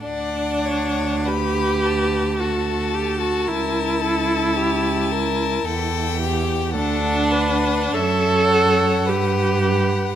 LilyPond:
<<
  \new Staff \with { instrumentName = "Violin" } { \time 3/4 \key d \major \tempo 4 = 54 fis''4 b''8 a''8 a''4~ | a''2 g''4 | fis''4 e''8 fis''4. | }
  \new Staff \with { instrumentName = "Violin" } { \time 3/4 \key d \major d''8 cis''8 b'4 a'4 | ais'8 a'8 g'8 ais'8 a'8 g'8 | a'8 b'8 cis''4 b'8 b'8 | }
  \new Staff \with { instrumentName = "Viola" } { \time 3/4 \key d \major d'4 g'4 fis'8 g'16 fis'16 | e'2~ e'8 r8 | d'4 a'4 g'4 | }
  \new Staff \with { instrumentName = "Cello" } { \clef bass \time 3/4 \key d \major d,2. | cis,2 e,4 | d,4 fis,4 g,4 | }
>>